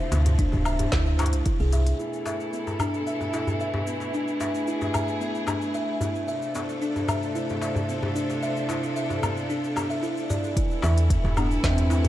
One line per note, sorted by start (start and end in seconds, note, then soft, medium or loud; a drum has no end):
0.00 1.96 C3 medium
0.00 1.96 F3 medium
0.00 1.95 A3 medium
0.00 0.11 E5 medium
0.12 0.46 D2 medium
0.12 0.38 B3 medium
0.12 closed hi-hat soft
0.12 djembe slap medium
0.12 shaker medium
0.26 closed hi-hat soft
0.26 djembe bass medium
0.26 shaker soft
0.39 0.52 D4 medium
0.39 kick loud
0.39 closed hi-hat medium
0.39 shaker soft
0.52 0.86 D1 loud
0.52 djembe tone medium
0.52 djembe bass medium
0.52 shaker soft
0.65 0.79 E5 medium
0.65 low woodblock medium
0.65 shaker medium
0.79 closed hi-hat soft
0.79 djembe bass medium
0.79 shaker soft
0.92 1.35 D2 medium
0.92 1.05 E4 medium
0.92 kick loud
0.92 snare medium
0.92 closed hi-hat medium
0.92 shaker soft
1.06 shaker soft
1.19 1.33 E4 medium
1.19 closed hi-hat soft
1.19 djembe slap medium
1.19 djembe tone medium
1.19 low woodblock medium
1.19 shaker medium
1.26 closed hi-hat medium
1.33 1.42 C2 medium
1.33 closed hi-hat soft
1.33 shaker soft
1.46 1.59 E4 medium
1.46 kick loud
1.46 closed hi-hat medium
1.46 shaker soft
1.60 1.94 C2 medium
1.60 1.72 G#4 loud
1.60 shaker soft
1.73 1.81 E5 medium
1.73 closed hi-hat soft
1.73 djembe tone medium
1.73 shaker medium
1.87 closed hi-hat soft
1.87 shaker soft
1.99 6.24 B2 medium
1.99 6.24 E3 medium
1.99 10.53 A3 medium
1.99 6.24 E4 medium
1.99 2.25 E4 medium
1.99 4.12 A4 medium
1.99 shaker soft
2.13 shaker soft
2.26 2.52 E5 medium
2.26 djembe slap medium
2.26 shaker medium
2.40 shaker soft
2.53 2.79 B3 medium
2.53 shaker soft
2.67 djembe tone medium
2.67 shaker soft
2.79 2.93 D4 medium
2.79 djembe bass medium
2.79 low woodblock medium
2.79 shaker medium
2.94 shaker soft
3.07 3.20 E5 medium
3.07 shaker soft
3.21 djembe tone medium
3.21 shaker soft
3.33 3.59 E4 medium
3.33 djembe slap medium
3.33 shaker medium
3.47 djembe bass medium
3.47 shaker soft
3.60 3.86 E5 medium
3.60 shaker soft
3.74 djembe slap soft
3.74 djembe tone medium
3.74 djembe bass medium
3.87 4.13 B3 medium
3.87 shaker medium
4.00 djembe slap soft
4.00 shaker soft
4.13 4.27 D4 medium
4.13 6.25 G#4 medium
4.13 shaker soft
4.28 shaker soft
4.40 4.54 E5 medium
4.40 djembe slap medium
4.40 shaker medium
4.55 shaker soft
4.67 4.93 E4 medium
4.67 shaker soft
4.81 djembe tone medium
4.81 shaker soft
4.94 5.20 E5 medium
4.94 djembe bass medium
4.94 low woodblock medium
4.94 shaker medium
5.08 shaker soft
5.21 5.47 B3 medium
5.21 shaker soft
5.35 shaker soft
5.47 5.61 D4 medium
5.47 djembe slap medium
5.47 djembe tone medium
5.47 low woodblock soft
5.47 shaker medium
5.62 shaker soft
5.74 5.88 E5 medium
5.74 shaker soft
6.01 6.27 E4 medium
6.01 djembe tone medium
6.01 djembe bass medium
6.01 shaker medium
6.15 shaker soft
6.28 10.53 C3 medium
6.28 10.53 F3 medium
6.28 10.53 D4 medium
6.28 10.53 A4 medium
6.28 6.54 E5 medium
6.28 shaker soft
6.42 shaker soft
6.55 6.80 B3 medium
6.55 djembe slap medium
6.55 shaker medium
6.69 shaker soft
6.82 6.95 D4 medium
6.82 shaker soft
6.96 djembe tone medium
6.96 shaker soft
7.08 7.22 E5 medium
7.08 djembe bass medium
7.08 low woodblock medium
7.08 shaker medium
7.23 shaker soft
7.35 7.61 E4 medium
7.35 shaker soft
7.50 djembe tone medium
7.50 shaker soft
7.61 7.88 E5 medium
7.61 djembe slap medium
7.61 shaker medium
7.76 djembe bass medium
7.76 shaker soft
7.89 8.14 B3 medium
7.89 shaker soft
8.03 djembe slap medium
8.03 djembe tone medium
8.03 djembe bass medium
8.16 8.29 D4 medium
8.16 shaker medium
8.30 djembe slap soft
8.30 shaker soft
8.43 8.56 E5 medium
8.43 shaker soft
8.57 shaker soft
8.69 8.95 E4 medium
8.69 djembe slap medium
8.69 shaker medium
8.83 shaker soft
8.96 9.22 E5 medium
8.96 shaker soft
9.10 djembe tone medium
9.10 shaker soft
9.23 9.48 B3 medium
9.23 djembe bass medium
9.23 low woodblock medium
9.23 shaker medium
9.37 shaker soft
9.50 9.63 D4 medium
9.50 shaker soft
9.64 shaker soft
9.76 9.90 B3 medium
9.76 djembe slap medium
9.76 djembe tone medium
9.76 low woodblock medium
9.76 shaker medium
9.90 10.02 E5 medium
9.90 shaker soft
10.03 10.16 E4 medium
10.03 shaker soft
10.17 shaker soft
10.30 10.38 D5 medium
10.30 djembe tone medium
10.30 djembe bass medium
10.30 shaker medium
10.44 shaker soft
10.56 12.08 E3 medium
10.56 12.08 A3 medium
10.56 12.08 E4 medium
10.56 10.82 E4 medium
10.56 12.08 A4 medium
10.56 kick loud
10.56 closed hi-hat medium
10.56 shaker soft
10.71 shaker soft
10.82 11.18 E2 loud
10.82 11.09 E5 medium
10.82 djembe slap medium
10.82 shaker medium
10.98 closed hi-hat soft
10.98 shaker soft
11.10 11.36 B3 medium
11.10 kick loud
11.10 closed hi-hat medium
11.10 shaker soft
11.24 11.58 E1 loud
11.24 djembe tone medium
11.24 shaker soft
11.37 11.49 B3 medium
11.37 11.50 D4 medium
11.37 djembe bass loud
11.37 low woodblock medium
11.37 shaker medium
11.51 shaker soft
11.64 12.06 E2 medium
11.64 12.08 C4 medium
11.64 11.77 E5 medium
11.64 kick loud
11.64 snare medium
11.64 closed hi-hat medium
11.64 shaker soft
11.77 closed hi-hat soft
11.77 djembe tone medium
11.77 shaker soft
11.90 12.08 E4 medium
11.90 djembe slap medium
11.90 shaker medium
12.04 12.08 D2 medium
12.04 closed hi-hat soft
12.04 djembe bass medium
12.04 shaker soft